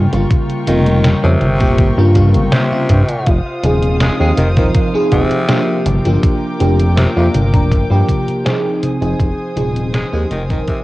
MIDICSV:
0, 0, Header, 1, 6, 480
1, 0, Start_track
1, 0, Tempo, 740741
1, 200, Time_signature, 4, 2, 24, 8
1, 7024, End_track
2, 0, Start_track
2, 0, Title_t, "String section"
2, 0, Program_c, 0, 48
2, 0, Note_on_c, 0, 65, 87
2, 0, Note_on_c, 0, 70, 79
2, 0, Note_on_c, 0, 79, 78
2, 0, Note_on_c, 0, 85, 97
2, 2099, Note_off_c, 0, 70, 0
2, 2100, Note_off_c, 0, 79, 0
2, 2100, Note_off_c, 0, 85, 0
2, 2120, Note_on_c, 0, 77, 78
2, 2120, Note_on_c, 0, 87, 95
2, 2121, Note_on_c, 0, 72, 80
2, 3783, Note_off_c, 0, 72, 0
2, 3783, Note_off_c, 0, 77, 0
2, 3783, Note_off_c, 0, 87, 0
2, 3794, Note_on_c, 0, 70, 78
2, 3797, Note_on_c, 0, 79, 77
2, 3797, Note_on_c, 0, 86, 93
2, 5698, Note_off_c, 0, 70, 0
2, 5699, Note_off_c, 0, 79, 0
2, 5699, Note_off_c, 0, 86, 0
2, 5722, Note_on_c, 0, 72, 81
2, 5723, Note_on_c, 0, 80, 77
2, 5723, Note_on_c, 0, 87, 95
2, 7024, Note_off_c, 0, 65, 0
2, 7024, Note_off_c, 0, 72, 0
2, 7024, Note_off_c, 0, 80, 0
2, 7024, Note_off_c, 0, 87, 0
2, 7024, End_track
3, 0, Start_track
3, 0, Title_t, "FM electric piano"
3, 0, Program_c, 1, 5
3, 74, Note_on_c, 1, 49, 77
3, 79, Note_on_c, 1, 55, 71
3, 80, Note_on_c, 1, 58, 74
3, 84, Note_on_c, 1, 65, 91
3, 407, Note_off_c, 1, 49, 0
3, 410, Note_off_c, 1, 55, 0
3, 410, Note_off_c, 1, 58, 0
3, 412, Note_off_c, 1, 65, 0
3, 427, Note_on_c, 1, 49, 79
3, 431, Note_on_c, 1, 55, 72
3, 433, Note_on_c, 1, 58, 74
3, 436, Note_on_c, 1, 65, 86
3, 768, Note_off_c, 1, 49, 0
3, 770, Note_off_c, 1, 55, 0
3, 771, Note_off_c, 1, 58, 0
3, 772, Note_off_c, 1, 65, 0
3, 790, Note_on_c, 1, 49, 85
3, 793, Note_on_c, 1, 55, 75
3, 799, Note_on_c, 1, 58, 78
3, 801, Note_on_c, 1, 61, 94
3, 876, Note_off_c, 1, 49, 0
3, 878, Note_off_c, 1, 55, 0
3, 881, Note_off_c, 1, 58, 0
3, 882, Note_off_c, 1, 61, 0
3, 1034, Note_on_c, 1, 46, 85
3, 1039, Note_on_c, 1, 55, 74
3, 1042, Note_on_c, 1, 58, 78
3, 1046, Note_on_c, 1, 67, 90
3, 1249, Note_off_c, 1, 46, 0
3, 1252, Note_off_c, 1, 55, 0
3, 1253, Note_off_c, 1, 58, 0
3, 1255, Note_off_c, 1, 67, 0
3, 1278, Note_on_c, 1, 49, 97
3, 1280, Note_on_c, 1, 55, 89
3, 1283, Note_on_c, 1, 58, 89
3, 1287, Note_on_c, 1, 65, 107
3, 1374, Note_off_c, 1, 49, 0
3, 1375, Note_off_c, 1, 55, 0
3, 1376, Note_off_c, 1, 58, 0
3, 1378, Note_off_c, 1, 65, 0
3, 1388, Note_on_c, 1, 49, 98
3, 1393, Note_on_c, 1, 55, 93
3, 1396, Note_on_c, 1, 58, 92
3, 1397, Note_on_c, 1, 65, 109
3, 1728, Note_off_c, 1, 49, 0
3, 1731, Note_off_c, 1, 55, 0
3, 1732, Note_off_c, 1, 58, 0
3, 1732, Note_off_c, 1, 65, 0
3, 1754, Note_on_c, 1, 49, 80
3, 1756, Note_on_c, 1, 55, 77
3, 1760, Note_on_c, 1, 58, 74
3, 1764, Note_on_c, 1, 65, 94
3, 1838, Note_off_c, 1, 49, 0
3, 1839, Note_off_c, 1, 55, 0
3, 1841, Note_off_c, 1, 58, 0
3, 1843, Note_off_c, 1, 65, 0
3, 2353, Note_on_c, 1, 53, 78
3, 2357, Note_on_c, 1, 60, 72
3, 2361, Note_on_c, 1, 63, 72
3, 2364, Note_on_c, 1, 68, 89
3, 2691, Note_off_c, 1, 53, 0
3, 2693, Note_off_c, 1, 60, 0
3, 2695, Note_off_c, 1, 63, 0
3, 2696, Note_off_c, 1, 68, 0
3, 2715, Note_on_c, 1, 53, 84
3, 2720, Note_on_c, 1, 60, 75
3, 2723, Note_on_c, 1, 63, 78
3, 2726, Note_on_c, 1, 67, 94
3, 2799, Note_off_c, 1, 53, 0
3, 2801, Note_off_c, 1, 60, 0
3, 2802, Note_off_c, 1, 63, 0
3, 2804, Note_off_c, 1, 67, 0
3, 2960, Note_on_c, 1, 53, 85
3, 2965, Note_on_c, 1, 60, 79
3, 2969, Note_on_c, 1, 63, 77
3, 2970, Note_on_c, 1, 70, 90
3, 3172, Note_off_c, 1, 53, 0
3, 3175, Note_off_c, 1, 60, 0
3, 3176, Note_off_c, 1, 63, 0
3, 3177, Note_off_c, 1, 70, 0
3, 3199, Note_on_c, 1, 53, 97
3, 3202, Note_on_c, 1, 60, 89
3, 3205, Note_on_c, 1, 63, 89
3, 3209, Note_on_c, 1, 68, 111
3, 3529, Note_off_c, 1, 53, 0
3, 3531, Note_off_c, 1, 60, 0
3, 3533, Note_off_c, 1, 63, 0
3, 3534, Note_off_c, 1, 68, 0
3, 3552, Note_on_c, 1, 53, 94
3, 3555, Note_on_c, 1, 58, 86
3, 3558, Note_on_c, 1, 62, 84
3, 3562, Note_on_c, 1, 67, 104
3, 3890, Note_off_c, 1, 53, 0
3, 3892, Note_off_c, 1, 58, 0
3, 3893, Note_off_c, 1, 62, 0
3, 3895, Note_off_c, 1, 67, 0
3, 3922, Note_on_c, 1, 53, 79
3, 3925, Note_on_c, 1, 58, 75
3, 3928, Note_on_c, 1, 62, 72
3, 3930, Note_on_c, 1, 67, 87
3, 4251, Note_off_c, 1, 53, 0
3, 4252, Note_off_c, 1, 58, 0
3, 4254, Note_off_c, 1, 62, 0
3, 4255, Note_off_c, 1, 67, 0
3, 4274, Note_on_c, 1, 53, 78
3, 4276, Note_on_c, 1, 58, 74
3, 4279, Note_on_c, 1, 62, 74
3, 4283, Note_on_c, 1, 67, 92
3, 4611, Note_off_c, 1, 53, 0
3, 4612, Note_off_c, 1, 58, 0
3, 4614, Note_off_c, 1, 62, 0
3, 4616, Note_off_c, 1, 67, 0
3, 4637, Note_on_c, 1, 53, 87
3, 4641, Note_on_c, 1, 58, 79
3, 4644, Note_on_c, 1, 62, 77
3, 4648, Note_on_c, 1, 65, 91
3, 4720, Note_off_c, 1, 53, 0
3, 4721, Note_off_c, 1, 58, 0
3, 4723, Note_off_c, 1, 62, 0
3, 4725, Note_off_c, 1, 65, 0
3, 4878, Note_on_c, 1, 53, 83
3, 4880, Note_on_c, 1, 58, 78
3, 4883, Note_on_c, 1, 62, 79
3, 4884, Note_on_c, 1, 70, 91
3, 5091, Note_off_c, 1, 53, 0
3, 5092, Note_off_c, 1, 58, 0
3, 5094, Note_off_c, 1, 62, 0
3, 5094, Note_off_c, 1, 70, 0
3, 5120, Note_on_c, 1, 53, 100
3, 5121, Note_on_c, 1, 58, 91
3, 5124, Note_on_c, 1, 62, 90
3, 5128, Note_on_c, 1, 67, 108
3, 5450, Note_off_c, 1, 53, 0
3, 5451, Note_off_c, 1, 58, 0
3, 5452, Note_off_c, 1, 62, 0
3, 5454, Note_off_c, 1, 67, 0
3, 5473, Note_on_c, 1, 53, 91
3, 5478, Note_on_c, 1, 60, 87
3, 5480, Note_on_c, 1, 63, 89
3, 5484, Note_on_c, 1, 68, 100
3, 5811, Note_off_c, 1, 53, 0
3, 5813, Note_off_c, 1, 60, 0
3, 5814, Note_off_c, 1, 63, 0
3, 5816, Note_off_c, 1, 68, 0
3, 5836, Note_on_c, 1, 53, 80
3, 5841, Note_on_c, 1, 60, 75
3, 5842, Note_on_c, 1, 63, 75
3, 5846, Note_on_c, 1, 68, 89
3, 6168, Note_off_c, 1, 53, 0
3, 6170, Note_off_c, 1, 60, 0
3, 6171, Note_off_c, 1, 63, 0
3, 6173, Note_off_c, 1, 68, 0
3, 6194, Note_on_c, 1, 53, 78
3, 6197, Note_on_c, 1, 60, 73
3, 6199, Note_on_c, 1, 63, 75
3, 6203, Note_on_c, 1, 68, 89
3, 6531, Note_off_c, 1, 53, 0
3, 6533, Note_off_c, 1, 60, 0
3, 6534, Note_off_c, 1, 63, 0
3, 6536, Note_off_c, 1, 68, 0
3, 6555, Note_on_c, 1, 53, 85
3, 6559, Note_on_c, 1, 60, 77
3, 6561, Note_on_c, 1, 63, 76
3, 6564, Note_on_c, 1, 67, 95
3, 6638, Note_off_c, 1, 53, 0
3, 6641, Note_off_c, 1, 60, 0
3, 6642, Note_off_c, 1, 63, 0
3, 6643, Note_off_c, 1, 67, 0
3, 6794, Note_on_c, 1, 53, 84
3, 6797, Note_on_c, 1, 60, 78
3, 6801, Note_on_c, 1, 63, 78
3, 6804, Note_on_c, 1, 70, 93
3, 7009, Note_off_c, 1, 53, 0
3, 7011, Note_off_c, 1, 60, 0
3, 7013, Note_off_c, 1, 63, 0
3, 7014, Note_off_c, 1, 70, 0
3, 7024, End_track
4, 0, Start_track
4, 0, Title_t, "Tenor saxophone"
4, 0, Program_c, 2, 66
4, 441, Note_on_c, 2, 51, 99
4, 730, Note_off_c, 2, 51, 0
4, 805, Note_on_c, 2, 48, 103
4, 1284, Note_off_c, 2, 48, 0
4, 1638, Note_on_c, 2, 48, 95
4, 2168, Note_off_c, 2, 48, 0
4, 2603, Note_on_c, 2, 56, 94
4, 2681, Note_off_c, 2, 56, 0
4, 2721, Note_on_c, 2, 56, 80
4, 2797, Note_off_c, 2, 56, 0
4, 2834, Note_on_c, 2, 51, 90
4, 2917, Note_off_c, 2, 51, 0
4, 2960, Note_on_c, 2, 51, 75
4, 3036, Note_off_c, 2, 51, 0
4, 3319, Note_on_c, 2, 48, 98
4, 3799, Note_off_c, 2, 48, 0
4, 4517, Note_on_c, 2, 48, 91
4, 4598, Note_off_c, 2, 48, 0
4, 4642, Note_on_c, 2, 48, 81
4, 4717, Note_off_c, 2, 48, 0
4, 6440, Note_on_c, 2, 56, 92
4, 6519, Note_off_c, 2, 56, 0
4, 6564, Note_on_c, 2, 56, 82
4, 6638, Note_off_c, 2, 56, 0
4, 6680, Note_on_c, 2, 51, 89
4, 6759, Note_off_c, 2, 51, 0
4, 6805, Note_on_c, 2, 51, 76
4, 6879, Note_off_c, 2, 51, 0
4, 6922, Note_on_c, 2, 48, 92
4, 7000, Note_off_c, 2, 48, 0
4, 7024, End_track
5, 0, Start_track
5, 0, Title_t, "Analog synth bass"
5, 0, Program_c, 3, 38
5, 83, Note_on_c, 3, 31, 99
5, 162, Note_off_c, 3, 31, 0
5, 438, Note_on_c, 3, 29, 96
5, 739, Note_off_c, 3, 29, 0
5, 802, Note_on_c, 3, 41, 107
5, 882, Note_off_c, 3, 41, 0
5, 918, Note_on_c, 3, 31, 80
5, 1042, Note_on_c, 3, 29, 83
5, 1051, Note_off_c, 3, 31, 0
5, 1158, Note_on_c, 3, 31, 89
5, 1168, Note_off_c, 3, 29, 0
5, 1243, Note_off_c, 3, 31, 0
5, 1282, Note_on_c, 3, 43, 90
5, 1522, Note_on_c, 3, 31, 99
5, 1532, Note_off_c, 3, 43, 0
5, 1601, Note_off_c, 3, 31, 0
5, 1877, Note_on_c, 3, 43, 93
5, 1963, Note_off_c, 3, 43, 0
5, 2119, Note_on_c, 3, 29, 101
5, 2204, Note_off_c, 3, 29, 0
5, 2355, Note_on_c, 3, 27, 101
5, 2658, Note_off_c, 3, 27, 0
5, 2722, Note_on_c, 3, 39, 109
5, 2801, Note_off_c, 3, 39, 0
5, 2838, Note_on_c, 3, 29, 82
5, 2963, Note_on_c, 3, 27, 84
5, 2973, Note_off_c, 3, 29, 0
5, 3042, Note_off_c, 3, 27, 0
5, 3318, Note_on_c, 3, 27, 105
5, 3403, Note_off_c, 3, 27, 0
5, 3798, Note_on_c, 3, 31, 106
5, 3883, Note_off_c, 3, 31, 0
5, 3923, Note_on_c, 3, 31, 100
5, 4002, Note_off_c, 3, 31, 0
5, 4279, Note_on_c, 3, 29, 101
5, 4580, Note_off_c, 3, 29, 0
5, 4645, Note_on_c, 3, 41, 104
5, 4723, Note_off_c, 3, 41, 0
5, 4760, Note_on_c, 3, 31, 81
5, 4885, Note_on_c, 3, 29, 84
5, 4894, Note_off_c, 3, 31, 0
5, 4999, Note_on_c, 3, 31, 88
5, 5009, Note_off_c, 3, 29, 0
5, 5084, Note_off_c, 3, 31, 0
5, 5123, Note_on_c, 3, 43, 88
5, 5202, Note_off_c, 3, 43, 0
5, 5845, Note_on_c, 3, 29, 92
5, 5923, Note_off_c, 3, 29, 0
5, 5959, Note_on_c, 3, 29, 101
5, 6044, Note_off_c, 3, 29, 0
5, 6197, Note_on_c, 3, 27, 98
5, 6499, Note_off_c, 3, 27, 0
5, 6562, Note_on_c, 3, 39, 107
5, 6641, Note_off_c, 3, 39, 0
5, 6677, Note_on_c, 3, 29, 80
5, 6804, Note_on_c, 3, 27, 88
5, 6814, Note_off_c, 3, 29, 0
5, 6883, Note_off_c, 3, 27, 0
5, 7024, End_track
6, 0, Start_track
6, 0, Title_t, "Drums"
6, 82, Note_on_c, 9, 42, 57
6, 82, Note_on_c, 9, 63, 37
6, 147, Note_off_c, 9, 42, 0
6, 147, Note_off_c, 9, 63, 0
6, 198, Note_on_c, 9, 36, 127
6, 198, Note_on_c, 9, 42, 79
6, 198, Note_on_c, 9, 63, 27
6, 263, Note_off_c, 9, 36, 0
6, 263, Note_off_c, 9, 42, 0
6, 263, Note_off_c, 9, 63, 0
6, 322, Note_on_c, 9, 42, 37
6, 387, Note_off_c, 9, 42, 0
6, 436, Note_on_c, 9, 42, 78
6, 436, Note_on_c, 9, 63, 62
6, 501, Note_off_c, 9, 42, 0
6, 501, Note_off_c, 9, 63, 0
6, 560, Note_on_c, 9, 42, 54
6, 560, Note_on_c, 9, 63, 36
6, 624, Note_off_c, 9, 42, 0
6, 624, Note_off_c, 9, 63, 0
6, 675, Note_on_c, 9, 38, 125
6, 675, Note_on_c, 9, 42, 82
6, 740, Note_off_c, 9, 38, 0
6, 740, Note_off_c, 9, 42, 0
6, 914, Note_on_c, 9, 42, 80
6, 914, Note_on_c, 9, 63, 61
6, 979, Note_off_c, 9, 42, 0
6, 979, Note_off_c, 9, 63, 0
6, 1040, Note_on_c, 9, 42, 53
6, 1042, Note_on_c, 9, 36, 115
6, 1104, Note_off_c, 9, 42, 0
6, 1107, Note_off_c, 9, 36, 0
6, 1156, Note_on_c, 9, 42, 80
6, 1156, Note_on_c, 9, 63, 28
6, 1158, Note_on_c, 9, 36, 121
6, 1221, Note_off_c, 9, 42, 0
6, 1221, Note_off_c, 9, 63, 0
6, 1222, Note_off_c, 9, 36, 0
6, 1395, Note_on_c, 9, 42, 79
6, 1395, Note_on_c, 9, 63, 62
6, 1398, Note_on_c, 9, 36, 65
6, 1459, Note_off_c, 9, 42, 0
6, 1459, Note_off_c, 9, 63, 0
6, 1462, Note_off_c, 9, 36, 0
6, 1519, Note_on_c, 9, 42, 52
6, 1519, Note_on_c, 9, 63, 34
6, 1583, Note_off_c, 9, 42, 0
6, 1583, Note_off_c, 9, 63, 0
6, 1633, Note_on_c, 9, 38, 127
6, 1633, Note_on_c, 9, 42, 80
6, 1633, Note_on_c, 9, 63, 27
6, 1698, Note_off_c, 9, 38, 0
6, 1698, Note_off_c, 9, 42, 0
6, 1698, Note_off_c, 9, 63, 0
6, 1874, Note_on_c, 9, 42, 81
6, 1874, Note_on_c, 9, 63, 65
6, 1878, Note_on_c, 9, 36, 66
6, 1939, Note_off_c, 9, 42, 0
6, 1939, Note_off_c, 9, 63, 0
6, 1943, Note_off_c, 9, 36, 0
6, 1999, Note_on_c, 9, 42, 54
6, 1999, Note_on_c, 9, 63, 35
6, 2064, Note_off_c, 9, 42, 0
6, 2064, Note_off_c, 9, 63, 0
6, 2115, Note_on_c, 9, 42, 77
6, 2118, Note_on_c, 9, 36, 124
6, 2180, Note_off_c, 9, 42, 0
6, 2183, Note_off_c, 9, 36, 0
6, 2355, Note_on_c, 9, 42, 75
6, 2355, Note_on_c, 9, 63, 64
6, 2420, Note_off_c, 9, 42, 0
6, 2420, Note_off_c, 9, 63, 0
6, 2478, Note_on_c, 9, 42, 53
6, 2478, Note_on_c, 9, 63, 36
6, 2543, Note_off_c, 9, 42, 0
6, 2543, Note_off_c, 9, 63, 0
6, 2595, Note_on_c, 9, 38, 123
6, 2595, Note_on_c, 9, 42, 77
6, 2659, Note_off_c, 9, 38, 0
6, 2659, Note_off_c, 9, 42, 0
6, 2836, Note_on_c, 9, 42, 78
6, 2836, Note_on_c, 9, 63, 64
6, 2901, Note_off_c, 9, 42, 0
6, 2901, Note_off_c, 9, 63, 0
6, 2961, Note_on_c, 9, 42, 53
6, 2961, Note_on_c, 9, 63, 35
6, 2963, Note_on_c, 9, 36, 113
6, 3026, Note_off_c, 9, 42, 0
6, 3026, Note_off_c, 9, 63, 0
6, 3027, Note_off_c, 9, 36, 0
6, 3076, Note_on_c, 9, 42, 79
6, 3076, Note_on_c, 9, 63, 28
6, 3078, Note_on_c, 9, 36, 116
6, 3141, Note_off_c, 9, 42, 0
6, 3141, Note_off_c, 9, 63, 0
6, 3143, Note_off_c, 9, 36, 0
6, 3317, Note_on_c, 9, 42, 75
6, 3317, Note_on_c, 9, 63, 61
6, 3318, Note_on_c, 9, 36, 61
6, 3382, Note_off_c, 9, 42, 0
6, 3382, Note_off_c, 9, 63, 0
6, 3383, Note_off_c, 9, 36, 0
6, 3441, Note_on_c, 9, 42, 52
6, 3441, Note_on_c, 9, 63, 35
6, 3505, Note_off_c, 9, 42, 0
6, 3505, Note_off_c, 9, 63, 0
6, 3556, Note_on_c, 9, 38, 124
6, 3556, Note_on_c, 9, 42, 80
6, 3556, Note_on_c, 9, 63, 27
6, 3621, Note_off_c, 9, 38, 0
6, 3621, Note_off_c, 9, 42, 0
6, 3621, Note_off_c, 9, 63, 0
6, 3797, Note_on_c, 9, 42, 80
6, 3797, Note_on_c, 9, 63, 65
6, 3862, Note_off_c, 9, 42, 0
6, 3862, Note_off_c, 9, 63, 0
6, 3923, Note_on_c, 9, 42, 52
6, 3923, Note_on_c, 9, 63, 38
6, 3987, Note_off_c, 9, 42, 0
6, 3987, Note_off_c, 9, 63, 0
6, 4039, Note_on_c, 9, 36, 120
6, 4040, Note_on_c, 9, 42, 77
6, 4040, Note_on_c, 9, 63, 27
6, 4104, Note_off_c, 9, 36, 0
6, 4104, Note_off_c, 9, 42, 0
6, 4104, Note_off_c, 9, 63, 0
6, 4279, Note_on_c, 9, 42, 73
6, 4279, Note_on_c, 9, 63, 64
6, 4344, Note_off_c, 9, 42, 0
6, 4344, Note_off_c, 9, 63, 0
6, 4404, Note_on_c, 9, 42, 52
6, 4404, Note_on_c, 9, 63, 38
6, 4469, Note_off_c, 9, 42, 0
6, 4469, Note_off_c, 9, 63, 0
6, 4520, Note_on_c, 9, 38, 117
6, 4520, Note_on_c, 9, 42, 76
6, 4585, Note_off_c, 9, 38, 0
6, 4585, Note_off_c, 9, 42, 0
6, 4759, Note_on_c, 9, 42, 80
6, 4759, Note_on_c, 9, 63, 67
6, 4824, Note_off_c, 9, 42, 0
6, 4824, Note_off_c, 9, 63, 0
6, 4884, Note_on_c, 9, 36, 106
6, 4884, Note_on_c, 9, 42, 50
6, 4884, Note_on_c, 9, 63, 37
6, 4948, Note_off_c, 9, 42, 0
6, 4948, Note_off_c, 9, 63, 0
6, 4949, Note_off_c, 9, 36, 0
6, 4999, Note_on_c, 9, 36, 115
6, 5002, Note_on_c, 9, 42, 78
6, 5002, Note_on_c, 9, 63, 29
6, 5064, Note_off_c, 9, 36, 0
6, 5067, Note_off_c, 9, 42, 0
6, 5067, Note_off_c, 9, 63, 0
6, 5240, Note_on_c, 9, 36, 61
6, 5243, Note_on_c, 9, 42, 75
6, 5243, Note_on_c, 9, 63, 64
6, 5304, Note_off_c, 9, 36, 0
6, 5308, Note_off_c, 9, 42, 0
6, 5308, Note_off_c, 9, 63, 0
6, 5367, Note_on_c, 9, 42, 51
6, 5367, Note_on_c, 9, 63, 37
6, 5431, Note_off_c, 9, 42, 0
6, 5431, Note_off_c, 9, 63, 0
6, 5483, Note_on_c, 9, 38, 122
6, 5483, Note_on_c, 9, 42, 79
6, 5483, Note_on_c, 9, 63, 29
6, 5548, Note_off_c, 9, 38, 0
6, 5548, Note_off_c, 9, 42, 0
6, 5548, Note_off_c, 9, 63, 0
6, 5722, Note_on_c, 9, 42, 77
6, 5722, Note_on_c, 9, 63, 66
6, 5787, Note_off_c, 9, 42, 0
6, 5787, Note_off_c, 9, 63, 0
6, 5847, Note_on_c, 9, 42, 50
6, 5847, Note_on_c, 9, 63, 38
6, 5911, Note_off_c, 9, 42, 0
6, 5911, Note_off_c, 9, 63, 0
6, 5960, Note_on_c, 9, 36, 119
6, 5963, Note_on_c, 9, 42, 80
6, 6025, Note_off_c, 9, 36, 0
6, 6027, Note_off_c, 9, 42, 0
6, 6201, Note_on_c, 9, 42, 79
6, 6201, Note_on_c, 9, 63, 66
6, 6266, Note_off_c, 9, 42, 0
6, 6266, Note_off_c, 9, 63, 0
6, 6326, Note_on_c, 9, 42, 53
6, 6326, Note_on_c, 9, 63, 39
6, 6390, Note_off_c, 9, 42, 0
6, 6390, Note_off_c, 9, 63, 0
6, 6440, Note_on_c, 9, 38, 115
6, 6440, Note_on_c, 9, 42, 78
6, 6505, Note_off_c, 9, 38, 0
6, 6505, Note_off_c, 9, 42, 0
6, 6679, Note_on_c, 9, 42, 81
6, 6679, Note_on_c, 9, 63, 69
6, 6743, Note_off_c, 9, 42, 0
6, 6743, Note_off_c, 9, 63, 0
6, 6803, Note_on_c, 9, 42, 53
6, 6803, Note_on_c, 9, 63, 39
6, 6804, Note_on_c, 9, 36, 108
6, 6868, Note_off_c, 9, 42, 0
6, 6868, Note_off_c, 9, 63, 0
6, 6869, Note_off_c, 9, 36, 0
6, 6917, Note_on_c, 9, 42, 79
6, 6917, Note_on_c, 9, 63, 30
6, 6920, Note_on_c, 9, 36, 110
6, 6982, Note_off_c, 9, 42, 0
6, 6982, Note_off_c, 9, 63, 0
6, 6985, Note_off_c, 9, 36, 0
6, 7024, End_track
0, 0, End_of_file